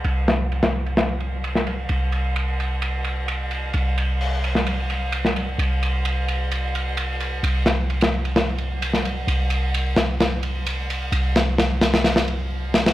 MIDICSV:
0, 0, Header, 1, 3, 480
1, 0, Start_track
1, 0, Tempo, 461538
1, 53, Time_signature, 4, 2, 24, 8
1, 13449, End_track
2, 0, Start_track
2, 0, Title_t, "808-style bass"
2, 0, Program_c, 0, 38
2, 48, Note_on_c, 0, 36, 85
2, 1947, Note_off_c, 0, 36, 0
2, 1970, Note_on_c, 0, 36, 84
2, 3869, Note_off_c, 0, 36, 0
2, 3890, Note_on_c, 0, 36, 87
2, 5789, Note_off_c, 0, 36, 0
2, 5807, Note_on_c, 0, 36, 82
2, 7707, Note_off_c, 0, 36, 0
2, 7729, Note_on_c, 0, 36, 83
2, 9628, Note_off_c, 0, 36, 0
2, 9645, Note_on_c, 0, 36, 84
2, 11546, Note_off_c, 0, 36, 0
2, 11565, Note_on_c, 0, 36, 85
2, 13449, Note_off_c, 0, 36, 0
2, 13449, End_track
3, 0, Start_track
3, 0, Title_t, "Drums"
3, 45, Note_on_c, 9, 51, 68
3, 149, Note_off_c, 9, 51, 0
3, 290, Note_on_c, 9, 51, 74
3, 292, Note_on_c, 9, 38, 89
3, 394, Note_off_c, 9, 51, 0
3, 396, Note_off_c, 9, 38, 0
3, 538, Note_on_c, 9, 51, 55
3, 642, Note_off_c, 9, 51, 0
3, 650, Note_on_c, 9, 51, 69
3, 653, Note_on_c, 9, 38, 94
3, 754, Note_off_c, 9, 51, 0
3, 757, Note_off_c, 9, 38, 0
3, 898, Note_on_c, 9, 51, 49
3, 1002, Note_off_c, 9, 51, 0
3, 1010, Note_on_c, 9, 38, 90
3, 1019, Note_on_c, 9, 51, 73
3, 1114, Note_off_c, 9, 38, 0
3, 1123, Note_off_c, 9, 51, 0
3, 1252, Note_on_c, 9, 51, 50
3, 1356, Note_off_c, 9, 51, 0
3, 1497, Note_on_c, 9, 51, 74
3, 1601, Note_off_c, 9, 51, 0
3, 1616, Note_on_c, 9, 38, 43
3, 1720, Note_off_c, 9, 38, 0
3, 1733, Note_on_c, 9, 51, 63
3, 1837, Note_off_c, 9, 51, 0
3, 1964, Note_on_c, 9, 51, 82
3, 2068, Note_off_c, 9, 51, 0
3, 2207, Note_on_c, 9, 51, 65
3, 2311, Note_off_c, 9, 51, 0
3, 2453, Note_on_c, 9, 51, 79
3, 2557, Note_off_c, 9, 51, 0
3, 2702, Note_on_c, 9, 51, 62
3, 2806, Note_off_c, 9, 51, 0
3, 2932, Note_on_c, 9, 51, 85
3, 3036, Note_off_c, 9, 51, 0
3, 3165, Note_on_c, 9, 51, 63
3, 3269, Note_off_c, 9, 51, 0
3, 3412, Note_on_c, 9, 51, 82
3, 3516, Note_off_c, 9, 51, 0
3, 3648, Note_on_c, 9, 51, 57
3, 3752, Note_off_c, 9, 51, 0
3, 3884, Note_on_c, 9, 51, 76
3, 3988, Note_off_c, 9, 51, 0
3, 4136, Note_on_c, 9, 51, 67
3, 4240, Note_off_c, 9, 51, 0
3, 4377, Note_on_c, 9, 46, 71
3, 4481, Note_off_c, 9, 46, 0
3, 4617, Note_on_c, 9, 51, 64
3, 4721, Note_off_c, 9, 51, 0
3, 4734, Note_on_c, 9, 38, 45
3, 4838, Note_off_c, 9, 38, 0
3, 4852, Note_on_c, 9, 51, 86
3, 4956, Note_off_c, 9, 51, 0
3, 5092, Note_on_c, 9, 51, 57
3, 5196, Note_off_c, 9, 51, 0
3, 5328, Note_on_c, 9, 51, 84
3, 5432, Note_off_c, 9, 51, 0
3, 5457, Note_on_c, 9, 38, 41
3, 5561, Note_off_c, 9, 38, 0
3, 5576, Note_on_c, 9, 51, 63
3, 5680, Note_off_c, 9, 51, 0
3, 5815, Note_on_c, 9, 51, 73
3, 5919, Note_off_c, 9, 51, 0
3, 6059, Note_on_c, 9, 51, 64
3, 6163, Note_off_c, 9, 51, 0
3, 6293, Note_on_c, 9, 51, 76
3, 6397, Note_off_c, 9, 51, 0
3, 6534, Note_on_c, 9, 51, 58
3, 6638, Note_off_c, 9, 51, 0
3, 6775, Note_on_c, 9, 51, 72
3, 6879, Note_off_c, 9, 51, 0
3, 7019, Note_on_c, 9, 51, 59
3, 7123, Note_off_c, 9, 51, 0
3, 7250, Note_on_c, 9, 51, 84
3, 7354, Note_off_c, 9, 51, 0
3, 7491, Note_on_c, 9, 51, 55
3, 7595, Note_off_c, 9, 51, 0
3, 7734, Note_on_c, 9, 51, 82
3, 7838, Note_off_c, 9, 51, 0
3, 7966, Note_on_c, 9, 38, 92
3, 7969, Note_on_c, 9, 51, 76
3, 8070, Note_off_c, 9, 38, 0
3, 8073, Note_off_c, 9, 51, 0
3, 8214, Note_on_c, 9, 51, 55
3, 8318, Note_off_c, 9, 51, 0
3, 8332, Note_on_c, 9, 51, 72
3, 8345, Note_on_c, 9, 38, 95
3, 8436, Note_off_c, 9, 51, 0
3, 8449, Note_off_c, 9, 38, 0
3, 8579, Note_on_c, 9, 51, 59
3, 8683, Note_off_c, 9, 51, 0
3, 8694, Note_on_c, 9, 51, 76
3, 8695, Note_on_c, 9, 38, 99
3, 8798, Note_off_c, 9, 51, 0
3, 8799, Note_off_c, 9, 38, 0
3, 8927, Note_on_c, 9, 51, 52
3, 9031, Note_off_c, 9, 51, 0
3, 9175, Note_on_c, 9, 51, 82
3, 9279, Note_off_c, 9, 51, 0
3, 9292, Note_on_c, 9, 38, 46
3, 9396, Note_off_c, 9, 38, 0
3, 9415, Note_on_c, 9, 51, 59
3, 9519, Note_off_c, 9, 51, 0
3, 9652, Note_on_c, 9, 51, 78
3, 9756, Note_off_c, 9, 51, 0
3, 9881, Note_on_c, 9, 51, 67
3, 9985, Note_off_c, 9, 51, 0
3, 10133, Note_on_c, 9, 51, 73
3, 10237, Note_off_c, 9, 51, 0
3, 10363, Note_on_c, 9, 38, 95
3, 10377, Note_on_c, 9, 51, 70
3, 10467, Note_off_c, 9, 38, 0
3, 10481, Note_off_c, 9, 51, 0
3, 10611, Note_on_c, 9, 51, 66
3, 10613, Note_on_c, 9, 38, 92
3, 10715, Note_off_c, 9, 51, 0
3, 10717, Note_off_c, 9, 38, 0
3, 10845, Note_on_c, 9, 51, 63
3, 10949, Note_off_c, 9, 51, 0
3, 11091, Note_on_c, 9, 51, 77
3, 11195, Note_off_c, 9, 51, 0
3, 11336, Note_on_c, 9, 51, 61
3, 11440, Note_off_c, 9, 51, 0
3, 11568, Note_on_c, 9, 51, 83
3, 11672, Note_off_c, 9, 51, 0
3, 11811, Note_on_c, 9, 51, 76
3, 11814, Note_on_c, 9, 38, 103
3, 11915, Note_off_c, 9, 51, 0
3, 11918, Note_off_c, 9, 38, 0
3, 12048, Note_on_c, 9, 38, 90
3, 12057, Note_on_c, 9, 51, 71
3, 12152, Note_off_c, 9, 38, 0
3, 12161, Note_off_c, 9, 51, 0
3, 12287, Note_on_c, 9, 38, 100
3, 12290, Note_on_c, 9, 51, 69
3, 12391, Note_off_c, 9, 38, 0
3, 12394, Note_off_c, 9, 51, 0
3, 12414, Note_on_c, 9, 38, 103
3, 12417, Note_on_c, 9, 51, 69
3, 12518, Note_off_c, 9, 38, 0
3, 12521, Note_off_c, 9, 51, 0
3, 12525, Note_on_c, 9, 38, 88
3, 12528, Note_on_c, 9, 51, 69
3, 12629, Note_off_c, 9, 38, 0
3, 12632, Note_off_c, 9, 51, 0
3, 12646, Note_on_c, 9, 38, 102
3, 12665, Note_on_c, 9, 51, 73
3, 12750, Note_off_c, 9, 38, 0
3, 12768, Note_off_c, 9, 51, 0
3, 12768, Note_on_c, 9, 51, 55
3, 12872, Note_off_c, 9, 51, 0
3, 13250, Note_on_c, 9, 38, 90
3, 13259, Note_on_c, 9, 51, 72
3, 13354, Note_off_c, 9, 38, 0
3, 13363, Note_off_c, 9, 51, 0
3, 13379, Note_on_c, 9, 38, 93
3, 13379, Note_on_c, 9, 51, 70
3, 13449, Note_off_c, 9, 38, 0
3, 13449, Note_off_c, 9, 51, 0
3, 13449, End_track
0, 0, End_of_file